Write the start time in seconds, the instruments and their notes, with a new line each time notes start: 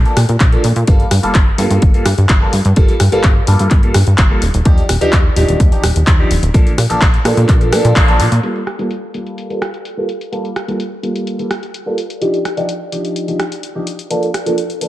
0.05 analog synth bass A#2, grand piano F3 A#3 D4 A4, closed hi-hat
0.17 analog synth bass A#2, cross-stick, open hi-hat
0.29 analog synth bass A#2, closed hi-hat
0.40 analog synth bass A#1, kick, clap, closed hi-hat
0.52 grand piano F3 A#3 D4 A4, closed hi-hat
0.64 analog synth bass A#2, open hi-hat
0.76 analog synth bass A#2, closed hi-hat
0.87 analog synth bass G1, grand piano G3 A#3 F4 A4, kick, closed hi-hat
1.00 closed hi-hat
1.11 analog synth bass G2, cross-stick, open hi-hat
1.23 analog synth bass G1, grand piano G3 A#3 F4 A4, closed hi-hat
1.35 analog synth bass G1, kick, clap, closed hi-hat
1.58 analog synth bass G2, grand piano G3 A#3 F4 A4, open hi-hat
1.71 analog synth bass G2, closed hi-hat
1.82 analog synth bass G1, kick, closed hi-hat
1.94 analog synth bass G2, grand piano G3 A#3 F4 A4, closed hi-hat
2.06 analog synth bass G2, cross-stick, open hi-hat
2.18 analog synth bass G2, closed hi-hat
2.29 analog synth bass G1, kick, clap, closed hi-hat
2.41 grand piano G3 A#3 F4 A4
2.53 analog synth bass G2, open hi-hat
2.65 analog synth bass G2, closed hi-hat
2.76 analog synth bass G1, grand piano G3 A#3 F4 A4, kick, closed hi-hat
2.89 analog synth bass G2, closed hi-hat
3.00 analog synth bass G2, cross-stick, open hi-hat
3.12 analog synth bass G1, grand piano G3 A#3 F4 A4, closed hi-hat
3.23 analog synth bass G1, kick, clap, closed hi-hat
3.47 analog synth bass G2, grand piano G3 A#3 F4 A4, open hi-hat
3.59 analog synth bass G2, closed hi-hat
3.71 analog synth bass G1, kick, clap, closed hi-hat
3.83 analog synth bass G2, grand piano G3 A#3 F4 A4, closed hi-hat
3.94 analog synth bass G2, cross-stick, open hi-hat
4.07 analog synth bass G2, closed hi-hat
4.18 analog synth bass G1, kick, clap, closed hi-hat
4.30 grand piano G3 A#3 F4 A4
4.42 analog synth bass D#1, open hi-hat
4.54 analog synth bass D#1, closed hi-hat
4.65 analog synth bass D#2, grand piano F3 D4 D#4 G4, kick, closed hi-hat
4.78 closed hi-hat
4.89 analog synth bass D#1, cross-stick, open hi-hat
5.01 analog synth bass D#2, grand piano F3 D4 D#4 G4, closed hi-hat
5.13 analog synth bass D#2, kick, clap, closed hi-hat
5.36 analog synth bass D#1, grand piano F3 D4 D#4 G4, open hi-hat
5.49 analog synth bass D#1, closed hi-hat
5.60 analog synth bass D#2, kick, closed hi-hat
5.72 analog synth bass D#1, grand piano F3 D4 D#4 G4, closed hi-hat
5.83 analog synth bass D#1, cross-stick, open hi-hat
5.96 analog synth bass D#1, closed hi-hat
6.07 analog synth bass D#2, kick, clap, closed hi-hat
6.19 grand piano F3 D4 D#4 G4
6.31 analog synth bass D#1, open hi-hat
6.43 analog synth bass D#1, closed hi-hat
6.54 analog synth bass A#1, grand piano F3 A#3 D4 A4, kick, closed hi-hat
6.66 analog synth bass A#2, closed hi-hat
6.78 analog synth bass A#2, cross-stick, open hi-hat
6.90 analog synth bass A#1, grand piano F3 A#3 D4 A4, closed hi-hat
7.01 analog synth bass A#1, kick, clap, closed hi-hat
7.14 closed hi-hat
7.25 analog synth bass A#2, grand piano F3 A#3 D4 A4, cross-stick, open hi-hat
7.37 analog synth bass A#2, closed hi-hat
7.49 analog synth bass A#1, kick, clap, closed hi-hat
7.61 grand piano F3 A#3 D4 A4, closed hi-hat
7.72 analog synth bass A#2, grand piano F3 A#3 D4 A4, cross-stick, open hi-hat
7.85 analog synth bass A#2, closed hi-hat
7.96 analog synth bass A#1, kick, clap, closed hi-hat
8.08 grand piano F3 A#3 D4 A4, closed hi-hat
8.20 analog synth bass A#2, open hi-hat
8.32 analog synth bass A#2, closed hi-hat
8.43 grand piano G3 A#3 F4 A4, closed hi-hat
8.56 closed hi-hat
8.67 cross-stick, closed hi-hat
8.79 grand piano G3 A#3 F4 A4, closed hi-hat
8.91 closed hi-hat
9.14 grand piano G3 A#3 F4 A4, closed hi-hat
9.27 closed hi-hat
9.38 closed hi-hat
9.50 grand piano G3 A#3 F4 A4, closed hi-hat
9.62 cross-stick, closed hi-hat
9.74 closed hi-hat
9.85 closed hi-hat
9.97 grand piano G3 A#3 F4 A4
10.09 closed hi-hat
10.21 closed hi-hat
10.32 grand piano G3 A#3 F4 A4, closed hi-hat
10.45 closed hi-hat
10.56 cross-stick, closed hi-hat
10.68 grand piano G3 A#3 F4 A4, closed hi-hat
10.80 closed hi-hat
11.03 grand piano G3 A#3 F4 A4, closed hi-hat
11.16 closed hi-hat
11.27 closed hi-hat
11.39 grand piano G3 A#3 F4 A4, closed hi-hat
11.51 cross-stick, closed hi-hat
11.63 closed hi-hat
11.74 closed hi-hat
11.86 grand piano G3 A#3 F4 A4
11.98 closed hi-hat
12.10 closed hi-hat
12.21 grand piano F3 D4 D#4 G4, closed hi-hat
12.34 closed hi-hat
12.45 cross-stick, closed hi-hat
12.57 grand piano F3 D4 D#4 G4, closed hi-hat
12.69 closed hi-hat
12.92 grand piano F3 D4 D#4 G4, closed hi-hat
13.05 closed hi-hat
13.16 closed hi-hat
13.28 grand piano F3 D4 D#4 G4, closed hi-hat
13.40 cross-stick, closed hi-hat
13.52 closed hi-hat
13.63 closed hi-hat
13.75 grand piano F3 D4 D#4 G4
13.87 closed hi-hat
13.99 closed hi-hat
14.10 grand piano F3 A#3 D4 A4, closed hi-hat
14.23 closed hi-hat
14.34 cross-stick, closed hi-hat
14.46 grand piano F3 A#3 D4 A4, closed hi-hat
14.58 closed hi-hat
14.70 closed hi-hat
14.81 grand piano F3 A#3 D4 A4, closed hi-hat